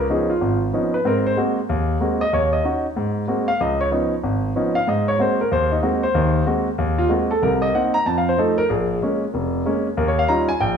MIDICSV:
0, 0, Header, 1, 2, 480
1, 0, Start_track
1, 0, Tempo, 318302
1, 1577, Time_signature, 4, 2, 24, 8
1, 16241, End_track
2, 0, Start_track
2, 0, Title_t, "Grand piano"
2, 0, Program_c, 0, 0
2, 147, Note_on_c, 0, 53, 52
2, 148, Note_on_c, 0, 59, 48
2, 148, Note_on_c, 0, 61, 51
2, 156, Note_on_c, 0, 63, 60
2, 171, Note_on_c, 0, 68, 57
2, 444, Note_off_c, 0, 68, 0
2, 448, Note_on_c, 0, 65, 70
2, 458, Note_off_c, 0, 53, 0
2, 459, Note_off_c, 0, 59, 0
2, 459, Note_off_c, 0, 61, 0
2, 463, Note_off_c, 0, 63, 0
2, 622, Note_on_c, 0, 32, 68
2, 889, Note_off_c, 0, 65, 0
2, 1032, Note_off_c, 0, 32, 0
2, 1103, Note_on_c, 0, 53, 53
2, 1110, Note_on_c, 0, 59, 46
2, 1114, Note_on_c, 0, 61, 48
2, 1120, Note_on_c, 0, 63, 57
2, 1416, Note_off_c, 0, 53, 0
2, 1419, Note_on_c, 0, 71, 70
2, 1420, Note_off_c, 0, 59, 0
2, 1422, Note_off_c, 0, 61, 0
2, 1425, Note_off_c, 0, 63, 0
2, 1582, Note_on_c, 0, 44, 66
2, 1584, Note_off_c, 0, 71, 0
2, 1588, Note_on_c, 0, 60, 69
2, 1616, Note_on_c, 0, 70, 78
2, 1886, Note_off_c, 0, 70, 0
2, 1908, Note_on_c, 0, 72, 81
2, 1992, Note_off_c, 0, 44, 0
2, 1995, Note_off_c, 0, 60, 0
2, 2064, Note_on_c, 0, 56, 56
2, 2068, Note_off_c, 0, 72, 0
2, 2069, Note_on_c, 0, 58, 48
2, 2076, Note_on_c, 0, 60, 49
2, 2076, Note_on_c, 0, 66, 58
2, 2377, Note_off_c, 0, 56, 0
2, 2379, Note_off_c, 0, 58, 0
2, 2382, Note_off_c, 0, 60, 0
2, 2382, Note_off_c, 0, 66, 0
2, 2554, Note_on_c, 0, 39, 71
2, 2958, Note_off_c, 0, 39, 0
2, 3022, Note_on_c, 0, 56, 51
2, 3024, Note_on_c, 0, 58, 48
2, 3030, Note_on_c, 0, 60, 45
2, 3032, Note_on_c, 0, 66, 55
2, 3335, Note_off_c, 0, 56, 0
2, 3336, Note_off_c, 0, 58, 0
2, 3336, Note_on_c, 0, 75, 92
2, 3339, Note_off_c, 0, 60, 0
2, 3340, Note_off_c, 0, 66, 0
2, 3502, Note_off_c, 0, 75, 0
2, 3510, Note_on_c, 0, 39, 66
2, 3523, Note_on_c, 0, 73, 74
2, 3799, Note_off_c, 0, 73, 0
2, 3813, Note_on_c, 0, 75, 75
2, 3916, Note_off_c, 0, 39, 0
2, 3980, Note_off_c, 0, 75, 0
2, 3984, Note_on_c, 0, 61, 50
2, 3996, Note_on_c, 0, 63, 50
2, 4002, Note_on_c, 0, 66, 59
2, 4296, Note_off_c, 0, 61, 0
2, 4302, Note_off_c, 0, 63, 0
2, 4305, Note_off_c, 0, 66, 0
2, 4471, Note_on_c, 0, 44, 66
2, 4876, Note_off_c, 0, 44, 0
2, 4939, Note_on_c, 0, 56, 53
2, 4943, Note_on_c, 0, 58, 48
2, 4945, Note_on_c, 0, 60, 45
2, 4950, Note_on_c, 0, 66, 55
2, 5246, Note_on_c, 0, 77, 88
2, 5253, Note_off_c, 0, 56, 0
2, 5255, Note_off_c, 0, 58, 0
2, 5256, Note_off_c, 0, 60, 0
2, 5259, Note_off_c, 0, 66, 0
2, 5417, Note_off_c, 0, 77, 0
2, 5435, Note_on_c, 0, 37, 69
2, 5447, Note_on_c, 0, 75, 70
2, 5720, Note_off_c, 0, 75, 0
2, 5740, Note_on_c, 0, 73, 80
2, 5838, Note_off_c, 0, 37, 0
2, 5842, Note_off_c, 0, 73, 0
2, 5900, Note_on_c, 0, 53, 52
2, 5905, Note_on_c, 0, 59, 50
2, 5908, Note_on_c, 0, 61, 49
2, 5913, Note_on_c, 0, 63, 61
2, 6214, Note_off_c, 0, 53, 0
2, 6216, Note_off_c, 0, 59, 0
2, 6218, Note_off_c, 0, 61, 0
2, 6220, Note_off_c, 0, 63, 0
2, 6385, Note_on_c, 0, 32, 70
2, 6793, Note_off_c, 0, 32, 0
2, 6871, Note_on_c, 0, 53, 52
2, 6876, Note_on_c, 0, 61, 50
2, 6878, Note_on_c, 0, 59, 46
2, 6882, Note_on_c, 0, 63, 58
2, 7167, Note_on_c, 0, 77, 87
2, 7179, Note_off_c, 0, 53, 0
2, 7182, Note_off_c, 0, 61, 0
2, 7183, Note_off_c, 0, 59, 0
2, 7185, Note_off_c, 0, 63, 0
2, 7337, Note_off_c, 0, 77, 0
2, 7350, Note_on_c, 0, 44, 68
2, 7370, Note_on_c, 0, 75, 74
2, 7642, Note_off_c, 0, 75, 0
2, 7663, Note_on_c, 0, 73, 87
2, 7756, Note_off_c, 0, 44, 0
2, 7822, Note_on_c, 0, 56, 52
2, 7825, Note_off_c, 0, 73, 0
2, 7828, Note_on_c, 0, 58, 47
2, 7831, Note_on_c, 0, 60, 50
2, 7836, Note_on_c, 0, 66, 58
2, 7861, Note_on_c, 0, 72, 72
2, 8128, Note_off_c, 0, 72, 0
2, 8135, Note_off_c, 0, 56, 0
2, 8138, Note_off_c, 0, 58, 0
2, 8139, Note_off_c, 0, 60, 0
2, 8142, Note_off_c, 0, 66, 0
2, 8158, Note_on_c, 0, 70, 76
2, 8313, Note_off_c, 0, 70, 0
2, 8316, Note_on_c, 0, 39, 71
2, 8333, Note_on_c, 0, 72, 84
2, 8604, Note_off_c, 0, 72, 0
2, 8625, Note_on_c, 0, 63, 64
2, 8719, Note_off_c, 0, 39, 0
2, 8784, Note_on_c, 0, 56, 52
2, 8786, Note_off_c, 0, 63, 0
2, 8786, Note_on_c, 0, 58, 47
2, 8792, Note_on_c, 0, 66, 58
2, 8793, Note_on_c, 0, 60, 53
2, 9096, Note_off_c, 0, 56, 0
2, 9097, Note_off_c, 0, 58, 0
2, 9099, Note_on_c, 0, 72, 82
2, 9100, Note_off_c, 0, 66, 0
2, 9101, Note_off_c, 0, 60, 0
2, 9266, Note_on_c, 0, 39, 72
2, 9268, Note_on_c, 0, 51, 70
2, 9674, Note_off_c, 0, 39, 0
2, 9675, Note_off_c, 0, 51, 0
2, 9704, Note_off_c, 0, 72, 0
2, 9741, Note_on_c, 0, 56, 54
2, 9747, Note_on_c, 0, 58, 51
2, 9748, Note_on_c, 0, 60, 53
2, 9751, Note_on_c, 0, 66, 62
2, 10055, Note_off_c, 0, 56, 0
2, 10058, Note_off_c, 0, 58, 0
2, 10058, Note_off_c, 0, 60, 0
2, 10060, Note_off_c, 0, 66, 0
2, 10229, Note_on_c, 0, 39, 71
2, 10532, Note_on_c, 0, 65, 83
2, 10636, Note_off_c, 0, 39, 0
2, 10694, Note_on_c, 0, 56, 55
2, 10700, Note_off_c, 0, 65, 0
2, 10704, Note_on_c, 0, 58, 50
2, 10706, Note_on_c, 0, 60, 49
2, 10708, Note_on_c, 0, 66, 57
2, 11012, Note_off_c, 0, 56, 0
2, 11017, Note_off_c, 0, 58, 0
2, 11018, Note_off_c, 0, 60, 0
2, 11019, Note_off_c, 0, 66, 0
2, 11020, Note_on_c, 0, 69, 82
2, 11185, Note_off_c, 0, 69, 0
2, 11192, Note_on_c, 0, 48, 69
2, 11196, Note_on_c, 0, 36, 70
2, 11204, Note_on_c, 0, 70, 83
2, 11480, Note_off_c, 0, 70, 0
2, 11489, Note_on_c, 0, 75, 87
2, 11598, Note_off_c, 0, 48, 0
2, 11600, Note_off_c, 0, 36, 0
2, 11659, Note_off_c, 0, 75, 0
2, 11664, Note_on_c, 0, 58, 53
2, 11676, Note_on_c, 0, 60, 49
2, 11681, Note_on_c, 0, 63, 58
2, 11685, Note_on_c, 0, 78, 70
2, 11961, Note_off_c, 0, 78, 0
2, 11975, Note_on_c, 0, 82, 94
2, 11977, Note_off_c, 0, 58, 0
2, 11983, Note_off_c, 0, 60, 0
2, 11986, Note_off_c, 0, 63, 0
2, 12142, Note_off_c, 0, 82, 0
2, 12155, Note_on_c, 0, 41, 70
2, 12160, Note_on_c, 0, 81, 81
2, 12305, Note_off_c, 0, 81, 0
2, 12333, Note_on_c, 0, 77, 74
2, 12471, Note_off_c, 0, 77, 0
2, 12498, Note_on_c, 0, 72, 82
2, 12560, Note_off_c, 0, 41, 0
2, 12627, Note_on_c, 0, 53, 53
2, 12634, Note_off_c, 0, 72, 0
2, 12638, Note_on_c, 0, 57, 47
2, 12643, Note_on_c, 0, 63, 57
2, 12648, Note_on_c, 0, 69, 72
2, 12923, Note_off_c, 0, 69, 0
2, 12938, Note_on_c, 0, 70, 96
2, 12939, Note_off_c, 0, 53, 0
2, 12945, Note_off_c, 0, 57, 0
2, 12947, Note_off_c, 0, 63, 0
2, 13104, Note_off_c, 0, 70, 0
2, 13113, Note_on_c, 0, 68, 68
2, 13124, Note_on_c, 0, 34, 73
2, 13525, Note_off_c, 0, 34, 0
2, 13553, Note_off_c, 0, 68, 0
2, 13606, Note_on_c, 0, 58, 49
2, 13607, Note_on_c, 0, 56, 57
2, 13615, Note_on_c, 0, 61, 61
2, 13908, Note_off_c, 0, 58, 0
2, 13909, Note_off_c, 0, 56, 0
2, 13913, Note_off_c, 0, 61, 0
2, 14082, Note_on_c, 0, 29, 68
2, 14484, Note_off_c, 0, 29, 0
2, 14559, Note_on_c, 0, 56, 58
2, 14564, Note_on_c, 0, 58, 50
2, 14571, Note_on_c, 0, 61, 59
2, 14865, Note_off_c, 0, 56, 0
2, 14868, Note_off_c, 0, 58, 0
2, 14871, Note_off_c, 0, 61, 0
2, 15038, Note_on_c, 0, 39, 74
2, 15045, Note_on_c, 0, 70, 74
2, 15188, Note_off_c, 0, 70, 0
2, 15202, Note_on_c, 0, 73, 75
2, 15346, Note_off_c, 0, 73, 0
2, 15365, Note_on_c, 0, 77, 85
2, 15442, Note_off_c, 0, 39, 0
2, 15504, Note_on_c, 0, 55, 57
2, 15508, Note_off_c, 0, 77, 0
2, 15509, Note_on_c, 0, 82, 87
2, 15512, Note_on_c, 0, 61, 55
2, 15515, Note_on_c, 0, 63, 51
2, 15520, Note_on_c, 0, 65, 65
2, 15793, Note_off_c, 0, 82, 0
2, 15812, Note_on_c, 0, 80, 99
2, 15818, Note_off_c, 0, 55, 0
2, 15822, Note_off_c, 0, 61, 0
2, 15823, Note_off_c, 0, 63, 0
2, 15826, Note_off_c, 0, 65, 0
2, 15982, Note_off_c, 0, 80, 0
2, 15992, Note_on_c, 0, 79, 81
2, 15998, Note_on_c, 0, 34, 75
2, 16241, Note_off_c, 0, 34, 0
2, 16241, Note_off_c, 0, 79, 0
2, 16241, End_track
0, 0, End_of_file